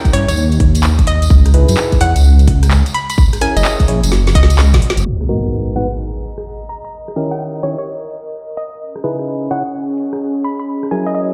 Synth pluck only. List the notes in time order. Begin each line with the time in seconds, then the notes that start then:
Already playing: G5
0.13 C#5
0.28 C#5
1.07 D#5
2.01 F#5
2.95 B5
3.10 B5
3.42 G#5
3.57 D#5
3.65 D#5
4.35 D#5
5.76 F#5
6.69 A#5
6.85 A#5
7.31 G5
7.63 C#5
7.78 C#5
8.57 D#5
9.51 F#5
10.44 B5
10.60 B5
10.91 G#5
11.06 D#5
11.15 D#5